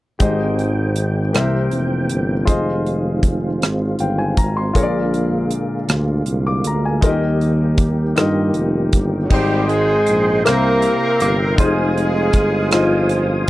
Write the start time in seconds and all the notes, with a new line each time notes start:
0.19 G#1 G#2 D#3 G#3 C4 G4 G#4 C5 D#5 G5, kick, closed hi-hat
0.59 closed hi-hat
0.96 closed hi-hat
1.33 C2 C3 E3 A#3 C4 G4 A#4 C5, cross-stick, closed hi-hat
1.37 E5
1.71 F1, closed hi-hat
2.09 G1, closed hi-hat
2.45 F1 D#3 G#3 C4 F4 G#4 C5 D#5, kick, closed hi-hat
2.86 closed hi-hat
3.23 kick, closed hi-hat
3.62 G#1, cross-stick, closed hi-hat
3.99 G1 F5 G5, closed hi-hat
4.18 G#5
4.37 G#1 A#5, kick, closed hi-hat
4.57 C6
4.73 A#1 A#2 D3 G#3 A#3 F4 G#4 A#4 C#5, kick, closed hi-hat
4.83 D5
5.14 closed hi-hat
5.51 closed hi-hat
5.88 D2, cross-stick, closed hi-hat
6.26 C2, closed hi-hat
6.47 D6
6.64 D2 A#5, closed hi-hat
6.85 G#5
7.01 D#2 D#3 G3 A#3 D#4 F4 G4 A#4, kick, closed hi-hat
7.05 G4 D#5
7.41 closed hi-hat
7.78 kick, closed hi-hat
8.16 G2 D#4 F4 A#4 D#5, cross-stick, closed hi-hat
8.24 G4
8.54 F1, closed hi-hat
8.93 G1, kick, closed hi-hat
9.25 F#3
9.30 G#1 G#2 G3 C4 D#4 G4 C5 D#5 G5 C6, kick, crash
9.34 C5
9.67 G#3 C4 D#4 G#4, closed hi-hat
10.06 A#1, closed hi-hat
10.43 C2 C3 A#3 E4 G4 A#4 E5 G5, cross-stick, closed hi-hat
10.47 C5
10.82 closed hi-hat
11.20 G1 A#3, closed hi-hat
11.56 F1 C4 D#4 F4 G4 G#4 C5 F5 G#5 D#6, kick, closed hi-hat
11.60 G#3 C5
11.65 G#4
11.98 closed hi-hat
12.33 G1, kick, closed hi-hat
12.70 F3 G#3 C4 D#4 F4 G#4 D#5, cross-stick, closed hi-hat
13.09 closed hi-hat